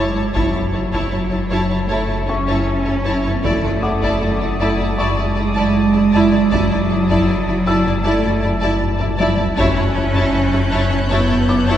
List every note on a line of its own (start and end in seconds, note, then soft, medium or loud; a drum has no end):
0.00 0.32 F#1 medium
0.00 0.22 F#3 soft
0.00 0.36 G#3 medium
0.00 0.14 E4 soft
0.00 0.14 C#5 medium
0.00 0.14 A5 medium
0.00 1.86 D6 soft
0.15 0.24 F#1 soft
0.15 0.23 E4 soft
0.15 0.23 C#5 soft
0.15 0.24 A5 soft
0.33 0.43 F#1 medium
0.33 3.41 F#1 medium
0.33 0.60 F#2 soft
0.33 1.87 F#3 medium
0.33 0.53 E4 soft
0.33 0.51 C#5 soft
0.33 0.52 A5 soft
0.33 taiko medium
0.53 0.62 F#1 soft
0.53 0.62 E4 soft
0.53 0.61 C#5 soft
0.53 0.61 A5 soft
0.73 0.82 F#1 soft
0.73 0.98 F#2 soft
0.73 0.82 E4 soft
0.73 0.81 C#5 soft
0.73 0.81 A5 soft
0.92 1.01 F#1 soft
0.92 1.11 E4 medium
0.92 1.10 C#5 soft
0.92 1.11 A5 soft
0.92 taiko medium
1.11 1.20 F#1 soft
1.11 1.36 F#3 soft
1.11 1.21 E4 soft
1.11 1.19 C#5 soft
1.11 1.20 A5 soft
1.30 1.39 F#1 soft
1.30 1.40 E4 soft
1.30 1.38 C#5 soft
1.30 1.40 A5 soft
1.50 1.58 F#1 soft
1.50 1.75 F#2 soft
1.50 1.70 E4 medium
1.50 1.69 C#5 medium
1.50 1.69 A5 soft
1.70 1.78 F#1 soft
1.70 1.79 E4 soft
1.70 1.78 C#5 soft
1.70 1.79 A5 soft
1.88 1.97 F#1 medium
1.88 2.14 F#2 medium
1.88 2.29 A3 medium
1.88 2.09 E4 soft
1.88 2.06 C#5 soft
1.88 2.07 A5 medium
2.07 2.17 F#1 soft
2.07 2.18 E4 soft
2.07 2.15 C#5 soft
2.07 2.17 A5 soft
2.27 2.36 F#1 soft
2.27 2.52 F#3 soft
2.27 3.45 C#4 medium
2.27 2.37 E4 soft
2.27 2.35 C#5 soft
2.27 4.56 E5 soft
2.27 2.36 A5 soft
2.27 4.56 C#6 soft
2.47 2.56 F#1 medium
2.47 2.66 E4 soft
2.47 2.65 C#5 medium
2.47 2.66 A5 soft
2.68 2.91 F#2 soft
2.85 2.94 F#1 soft
2.85 2.94 E4 soft
2.85 2.93 C#5 soft
2.85 2.93 A5 soft
3.04 3.13 F#1 medium
3.04 3.29 F#3 soft
3.04 3.23 E4 medium
3.04 3.22 C#5 medium
3.04 3.24 A5 soft
3.23 3.33 F#1 soft
3.23 3.33 E4 soft
3.23 3.31 C#5 soft
3.23 3.33 A5 soft
3.42 3.52 F#1 medium
3.42 6.48 F#1 medium
3.42 3.69 F#2 medium
3.42 4.98 A3 medium
3.42 3.62 E4 medium
3.42 3.62 D5 medium
3.42 3.62 A5 soft
3.42 9.16 D6 soft
3.42 8.39 D#6 soft
3.42 taiko medium
3.63 3.72 F#1 soft
3.63 3.72 E4 soft
3.63 3.71 D5 soft
3.63 3.72 A5 soft
3.82 3.91 F#1 soft
3.82 4.07 F#2 soft
3.82 3.91 E4 soft
3.82 3.90 D5 soft
3.82 6.09 F#5 soft
3.82 3.91 A5 soft
3.82 6.09 D6 soft
4.01 4.10 F#1 medium
4.01 4.21 E4 medium
4.01 4.19 D5 medium
4.01 4.21 A5 medium
4.01 taiko medium
4.20 4.29 F#1 soft
4.20 4.45 F#3 soft
4.20 4.30 E4 soft
4.20 4.28 D5 soft
4.20 4.30 A5 soft
4.40 4.48 F#1 soft
4.40 4.49 E4 soft
4.40 4.48 D5 soft
4.40 4.49 A5 soft
4.59 4.67 F#1 medium
4.59 4.84 F#2 soft
4.59 4.79 E4 medium
4.59 4.77 D5 soft
4.59 4.79 A5 medium
4.78 4.86 F#1 soft
4.78 4.87 E4 soft
4.78 4.86 D5 soft
4.78 4.87 A5 soft
4.97 5.05 F#1 medium
4.97 5.22 F#2 medium
4.97 6.49 G#3 medium
4.97 5.17 E4 medium
4.97 5.15 D5 medium
4.97 5.16 A5 medium
4.97 7.24 C#6 soft
5.16 5.24 F#1 soft
5.16 5.26 E4 soft
5.16 5.24 D5 soft
5.16 5.25 A5 soft
5.36 5.44 F#1 soft
5.36 5.60 F#3 soft
5.36 5.45 E4 soft
5.36 5.44 D5 soft
5.36 5.44 A5 soft
5.54 5.63 F#1 medium
5.54 5.74 E4 medium
5.54 5.74 D5 medium
5.54 5.73 A5 medium
5.76 5.98 F#2 soft
5.94 6.01 F#1 soft
5.94 6.03 E4 soft
5.94 6.01 D5 soft
5.94 6.01 A5 soft
6.12 6.20 F#1 medium
6.12 6.36 F#3 soft
6.12 6.32 E4 medium
6.12 6.30 D5 medium
6.12 6.31 A5 medium
6.32 6.40 F#1 soft
6.32 6.41 E4 soft
6.32 6.40 D5 soft
6.32 6.40 A5 soft
6.50 6.59 F#1 medium
6.50 9.53 F#1 medium
6.50 6.74 F#2 medium
6.50 8.05 F#3 medium
6.50 6.70 E4 medium
6.50 6.69 D5 medium
6.50 6.69 A5 medium
6.50 taiko medium
6.70 6.78 F#1 soft
6.70 6.80 E4 soft
6.70 6.78 D5 soft
6.70 6.78 A5 soft
6.89 6.97 F#1 soft
6.89 7.13 F#2 soft
6.89 6.98 E4 soft
6.89 6.98 D5 soft
6.89 6.97 A5 soft
7.08 7.16 F#1 medium
7.08 7.27 E4 medium
7.08 7.27 D5 medium
7.08 7.27 A5 medium
7.08 taiko medium
7.27 7.35 F#1 soft
7.27 7.51 F#3 soft
7.27 7.36 E4 soft
7.27 7.36 D5 soft
7.27 7.35 A5 soft
7.47 7.54 F#1 soft
7.47 7.56 E4 soft
7.47 7.55 D5 soft
7.47 7.54 A5 soft
7.66 7.74 F#1 medium
7.66 7.90 F#2 soft
7.66 7.85 E4 medium
7.66 7.84 D5 medium
7.66 7.83 A5 medium
7.66 9.92 E6 medium
7.84 7.93 F#1 soft
7.84 7.94 E4 soft
7.84 7.94 D5 soft
7.84 7.92 A5 soft
8.04 8.12 F#1 medium
8.04 8.28 F#2 medium
8.04 8.43 A3 medium
8.04 8.22 E4 medium
8.04 8.21 D5 medium
8.04 8.22 A5 medium
8.22 8.31 F#1 soft
8.22 8.32 E4 soft
8.22 8.30 D5 soft
8.22 8.31 A5 soft
8.41 8.50 F#1 soft
8.41 8.66 F#3 soft
8.41 8.51 E4 soft
8.41 8.50 D5 soft
8.41 8.49 A5 soft
8.60 8.70 F#1 medium
8.60 8.80 E4 medium
8.60 8.78 D5 medium
8.60 8.79 A5 medium
8.81 9.04 F#2 soft
8.81 taiko low-mid medium
8.98 9.08 F#1 soft
8.98 9.08 E4 soft
8.98 9.06 D5 medium
8.98 9.06 A5 soft
8.98 taiko low-mid medium
9.17 9.27 F#1 medium
9.17 9.42 F#3 soft
9.17 9.38 E4 medium
9.17 9.35 D5 medium
9.17 9.36 A5 medium
9.17 taiko high medium
9.36 9.46 F#1 soft
9.36 9.47 E4 soft
9.36 9.44 D5 soft
9.36 9.45 A5 medium
9.36 taiko low medium
9.56 9.65 F#1 medium
9.56 11.78 F#1 medium
9.56 9.80 F#2 medium
9.56 11.06 C#4 medium
9.56 9.76 E4 medium
9.56 9.75 C#5 medium
9.56 9.74 A5 medium
9.56 11.78 F#6 soft
9.56 taiko medium
9.75 9.84 F#1 soft
9.75 9.85 E4 soft
9.75 9.84 C#5 soft
9.75 9.83 A5 soft
9.94 10.03 F#1 soft
9.94 10.18 F#2 soft
9.94 10.03 E4 soft
9.94 10.03 C#5 soft
9.94 10.02 A5 soft
10.14 10.21 F#1 medium
10.14 10.32 E4 medium
10.14 10.32 C#5 medium
10.14 10.32 A5 medium
10.14 taiko medium
10.33 10.41 F#1 soft
10.33 10.56 F#3 soft
10.33 10.41 E4 soft
10.33 10.42 C#5 soft
10.33 10.41 A5 soft
10.33 11.78 G6 soft
10.52 10.60 F#1 soft
10.52 10.60 E4 soft
10.52 10.61 C#5 soft
10.52 10.60 A5 soft
10.71 10.79 F#1 medium
10.71 10.95 F#2 soft
10.71 10.90 E4 medium
10.71 10.89 C#5 medium
10.71 10.88 A5 medium
10.89 10.99 F#1 soft
10.89 10.99 E4 soft
10.89 10.98 C#5 soft
10.89 10.97 A5 soft
11.09 11.18 F#1 medium
11.09 11.33 F#2 medium
11.09 11.78 B3 medium
11.09 11.29 E4 medium
11.09 11.27 C#5 medium
11.09 11.27 A5 medium
11.28 11.38 F#1 soft
11.28 11.38 E4 soft
11.28 11.37 C#5 soft
11.28 11.36 A5 soft
11.48 11.57 F#1 soft
11.48 11.71 F#3 soft
11.48 11.57 E4 soft
11.48 11.56 C#5 soft
11.48 11.56 A5 medium
11.48 11.78 D6 soft
11.66 11.76 F#1 medium
11.66 11.78 E4 medium
11.66 11.78 C#5 medium
11.66 11.78 A5 medium